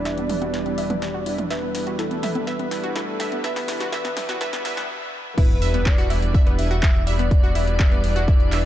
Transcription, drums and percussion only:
0.05 snare medium
0.05 closed hi-hat medium
0.18 closed hi-hat soft
0.18 high conga medium
0.29 open hi-hat medium
0.29 mid tom medium
0.42 closed hi-hat soft
0.42 high conga medium
0.54 snare medium
0.54 closed hi-hat medium
0.66 closed hi-hat soft
0.66 high conga medium
0.78 open hi-hat loud
0.90 closed hi-hat medium
0.90 mid tom medium
1.02 snare medium
1.02 closed hi-hat medium
1.26 open hi-hat loud
1.38 closed hi-hat medium
1.38 mid tom medium
1.50 snare medium
1.50 closed hi-hat medium
1.75 snare medium
1.75 open hi-hat loud
1.87 closed hi-hat soft
1.99 snare medium
1.99 closed hi-hat medium
2.11 closed hi-hat soft
2.11 high conga medium
2.23 snare medium
2.23 open hi-hat loud
2.23 mid tom loud
2.35 closed hi-hat soft
2.35 high conga medium
2.47 snare medium
2.47 closed hi-hat medium
2.59 closed hi-hat soft
2.59 high conga medium
2.71 snare medium
2.71 open hi-hat loud
2.84 closed hi-hat medium
2.96 snare medium
2.96 closed hi-hat medium
3.20 snare medium
3.20 open hi-hat loud
3.32 closed hi-hat medium
3.44 snare medium
3.44 closed hi-hat medium
3.56 snare medium
3.56 open hi-hat medium
3.68 snare loud
3.68 open hi-hat loud
3.80 snare medium
3.80 closed hi-hat soft
3.92 snare loud
3.92 closed hi-hat medium
4.05 snare medium
4.05 closed hi-hat soft
4.05 high conga medium
4.17 snare medium
4.17 open hi-hat loud
4.17 mid tom medium
4.29 snare medium
4.29 closed hi-hat medium
4.29 high conga medium
4.41 snare loud
4.41 closed hi-hat medium
4.53 snare medium
4.53 closed hi-hat soft
4.53 high conga medium
4.65 snare loud
4.65 open hi-hat loud
4.77 snare loud
4.77 closed hi-hat medium
4.77 mid tom medium
5.38 kick loud
5.38 closed hi-hat medium
5.38 crash loud
5.38 shaker medium
5.50 shaker soft
5.62 open hi-hat loud
5.74 closed hi-hat medium
5.74 shaker medium
5.86 kick loud
5.86 clap loud
5.86 closed hi-hat medium
5.86 shaker medium
5.98 closed hi-hat soft
5.98 shaker soft
6.10 open hi-hat loud
6.22 closed hi-hat medium
6.22 shaker medium
6.34 kick loud
6.34 closed hi-hat medium
6.34 shaker medium
6.47 closed hi-hat soft
6.47 shaker soft
6.59 open hi-hat loud
6.71 closed hi-hat medium
6.71 shaker medium
6.83 kick loud
6.83 clap loud
6.83 closed hi-hat medium
6.83 shaker medium
6.96 shaker soft
7.07 open hi-hat loud
7.19 closed hi-hat medium
7.19 shaker medium
7.31 kick loud
7.31 closed hi-hat medium
7.31 shaker medium
7.44 shaker soft
7.55 open hi-hat loud
7.68 closed hi-hat medium
7.68 shaker medium
7.80 kick loud
7.80 clap loud
7.80 closed hi-hat medium
7.80 shaker medium
7.92 closed hi-hat soft
7.92 shaker soft
8.04 open hi-hat loud
8.16 closed hi-hat medium
8.16 shaker medium
8.28 kick loud
8.28 closed hi-hat medium
8.28 shaker medium
8.40 closed hi-hat soft
8.40 shaker soft
8.52 clap medium
8.52 open hi-hat loud

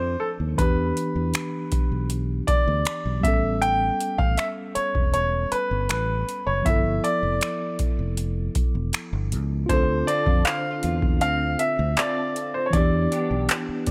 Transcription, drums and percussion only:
0.58 kick loud
0.58 closed hi-hat medium
0.97 closed hi-hat medium
1.34 finger snap loud
1.34 closed hi-hat medium
1.72 kick medium
1.72 closed hi-hat medium
2.10 closed hi-hat medium
2.48 kick medium
2.48 closed hi-hat medium
2.85 finger snap loud
2.85 closed hi-hat medium
3.24 kick loud
3.24 closed hi-hat medium
3.62 closed hi-hat medium
4.00 closed hi-hat medium
4.19 kick loud
4.38 finger snap medium
4.38 closed hi-hat medium
4.75 closed hi-hat medium
4.95 kick medium
5.14 closed hi-hat medium
5.52 closed hi-hat medium
5.89 finger snap loud
5.89 closed hi-hat medium
6.29 closed hi-hat medium
6.66 kick loud
6.66 closed hi-hat medium
7.04 closed hi-hat medium
7.41 finger snap loud
7.41 closed hi-hat medium
7.79 kick medium
7.79 closed hi-hat medium
8.17 closed hi-hat medium
8.55 kick medium
8.55 closed hi-hat medium
8.93 finger snap loud
8.93 closed hi-hat medium
9.32 closed hi-hat medium
9.69 kick medium
9.69 closed hi-hat medium
10.08 closed hi-hat medium
10.26 kick loud
10.45 clap loud
10.45 closed hi-hat medium
10.83 closed hi-hat medium
11.02 kick medium
11.21 closed hi-hat medium
11.59 closed hi-hat medium
11.97 clap loud
11.97 closed hi-hat medium
12.36 closed hi-hat medium
12.73 kick medium
12.73 closed hi-hat medium
13.12 closed hi-hat medium
13.49 clap loud
13.49 closed hi-hat medium
13.87 kick medium
13.87 closed hi-hat medium

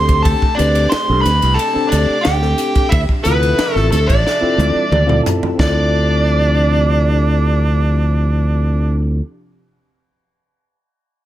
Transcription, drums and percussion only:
0.09 kick medium
0.09 ride medium
0.25 kick loud
0.25 ride medium
0.42 kick medium
0.59 hi-hat pedal medium
0.59 ride medium
0.75 ride medium
0.92 snare loud
0.92 ride medium
1.25 snare soft
1.25 hi-hat pedal medium
1.25 ride medium
1.42 ride medium
1.59 ride medium
1.92 hi-hat pedal medium
1.92 ride medium
2.25 snare loud
2.25 ride medium
2.42 snare soft
2.58 hi-hat pedal medium
2.58 ride medium
2.75 kick medium
2.75 ride medium
2.92 kick loud
2.92 ride medium
3.09 kick medium
3.25 hi-hat pedal medium
3.25 ride medium
3.43 ride medium
3.59 snare loud
3.59 ride medium
3.76 snare soft
3.92 hi-hat pedal medium
3.92 ride medium
4.09 kick medium
4.09 ride medium
4.27 snare medium
4.59 hi-hat pedal medium
4.59 high tom medium
4.92 mid tom medium
5.09 mid tom medium
5.26 floor tom medium
5.26 hi-hat pedal medium
5.43 floor tom medium
5.59 kick loud
5.59 snare medium

